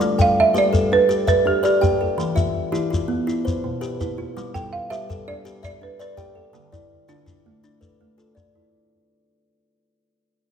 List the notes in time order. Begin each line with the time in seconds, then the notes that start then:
Already playing: A4 D5
0.00 G3, shekere
0.18 A4 F5 G5, shekere
0.40 E5
0.54 G3 G4 B4 D5, shekere
0.73 A4, shekere
0.92 D4 B4
1.09 G4, shekere
1.27 B4 D5 E5, shekere
1.46 D4 G4
1.63 G4 B4 D5, shekere
1.81 G4 D5 G5, shekere
2.01 A4
2.18 E3, shekere
2.35 F4 E5, shekere
2.72 E3 E4 G4, shekere
2.90 F4, shekere
3.08 B3
3.27 E4, shekere
3.45 B4 C5, shekere
3.64 B2
3.81 G4 B4, shekere
4.01 E4 B4, shekere
4.18 F4
4.37 G3, shekere
4.54 A4 G5, shekere
4.73 F5
4.90 G3 G4 B4 E5, shekere
5.10 A4, shekere
5.28 D4 D5
5.45 G4, shekere
5.63 D5 E5, shekere
5.82 D4 B4
5.99 B4 D5, shekere
6.17 G4 D5 G5, shekere
6.35 A4
6.53 D3, shekere
6.72 E4 D5, shekere
7.09 D3 D4 F4, shekere
7.26 E4, shekere
7.46 A3
7.64 D4, shekere
7.81 A4 B4, shekere
8.01 A3
8.18 F4 A4, shekere
8.35 D4 A4 D5, shekere
8.55 E4